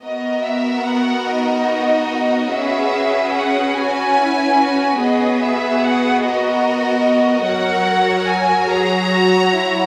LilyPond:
<<
  \new Staff \with { instrumentName = "Violin section" } { \time 6/8 \key b \major \tempo 4. = 49 dis''8 e''8 fis''8 dis''4. | e''4 fis''8 gis''4. | dis''8 e''8 fis''8 dis''4. | fis''4 gis''8 ais''4. | }
  \new Staff \with { instrumentName = "Violin section" } { \time 6/8 \key b \major << { ais'2. | b'2.~ | b'4. ais'4. | cis''2. | } \\ { fis'2.~ | fis'2. | fis'2.~ | fis'2. | } >> }
  \new Staff \with { instrumentName = "Cello section" } { \time 6/8 \key b \major r4. dis'4. | gis'4. fis'8 e'8 fis'8 | gis'4. fis'4. | ais'4. gis'8 fis'8 e'8 | }
  \new Staff \with { instrumentName = "Viola section" } { \time 6/8 \key b \major b2. | cis'2. | b2. | fis2. | }
>>